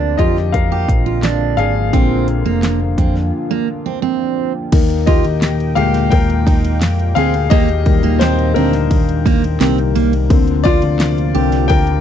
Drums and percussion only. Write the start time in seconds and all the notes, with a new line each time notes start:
0.19 kick, closed hi-hat
0.36 snare
0.54 kick, closed hi-hat
0.88 kick, closed hi-hat
1.23 snare, clap, closed hi-hat
1.59 closed hi-hat
1.93 kick, closed hi-hat
2.28 closed hi-hat
2.63 snare, clap, closed hi-hat
2.98 kick, closed hi-hat
3.16 snare
4.72 kick, crash, ride
4.90 ride
5.07 kick, ride
5.24 ride
5.42 snare, clap, ride
5.60 ride
5.77 ride
5.94 snare, ride
6.11 kick, ride
6.30 ride
6.47 kick, ride
6.65 ride
6.81 snare, clap, ride
7.00 ride
7.16 open hi-hat, ride
7.34 ride
7.51 kick, ride
7.69 ride
7.86 kick, ride
8.03 ride
8.21 snare, clap, ride
8.39 ride
8.56 ride
8.73 snare, ride
8.91 kick, ride
9.09 ride
9.26 kick, ride
9.44 ride
9.61 snare, clap, ride
9.78 ride
9.96 open hi-hat, ride
10.13 ride
10.30 kick, ride
10.48 ride
10.65 kick, ride
10.82 ride
11.00 snare, clap, ride
11.18 ride
11.35 ride
11.52 snare, ride
11.69 kick, ride
11.87 ride